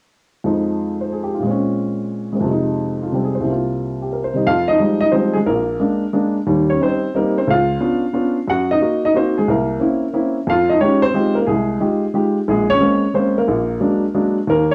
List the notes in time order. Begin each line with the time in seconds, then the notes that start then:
0.44 F2 F3 G#3 D#4
1.01 C5
1.12 G#4
1.23 G4
1.34 F4
1.39 A#2 G#3
1.47 C4 C#4
2.33 G#3 A#3 C4
2.41 F2 C3
2.48 G#3 D#4
3.03 F4
3.12 C3 G3 C4 G4
3.24 G#4
3.35 C5
3.40 C2 C3
3.48 A#3 F4
4.02 G4
4.13 A#4
4.24 C5
4.34 C3 G3 D#4 D#5
4.47 F2 F4 F5
4.68 D#4 D#5
4.79 F3 G3 G#3 D#4
5.01 D#4 D#5
5.12 F3 G3 G#3 C4 D#4 C5
5.34 G#3 G#4
5.46 A#1 A#3 A#4
5.80 G#3 A#3 D4
6.13 G#3 A#3 D4
6.47 D#2 G3
6.70 C#4 C#5
6.80 G3 C4 D#4 C5
7.14 G3 A#3 C4 D#4 A#4
7.38 C4 C5
7.47 C#2 F4 F5
7.80 B3 C#4 D4 F4
8.13 B3 C#4 D4 F4
8.48 F#2 F#4 F#5
8.71 D#4 D#5
8.81 A#3 D#4 F#4
9.05 D#4 D#5
9.14 A#3 C4 D#4 F#4 C5
9.38 G#3 G#4
9.48 C2 A#3 A#4
9.80 A#3 C4 C#4 E4
10.13 A#3 C4 C#4 E4
10.47 F2 F5
10.52 F4
10.69 D#4 D#5
10.80 G#3 C#4 D#4 F4 G4 C#5
11.02 C4 C5
11.14 G#3 D#4 F4 G4
11.35 A#4
11.39 A#3
11.46 C2 G#4
11.52 G#3
11.80 G#3 D#4 F4 G4
12.14 G#3 D#4 F4 G4
12.48 A#1 G#3 G#4
12.70 C#4 C#5
12.81 G#3 A#3 C4 C#4
13.14 G#3 A#3 C4 C#4 C5
13.38 A#3 A#4
13.48 A#1
13.80 F#3 G#3 A#3 D4
14.14 F#3 G#3 A#3 D4
14.47 D#2 A#3 A#4
14.71 C#5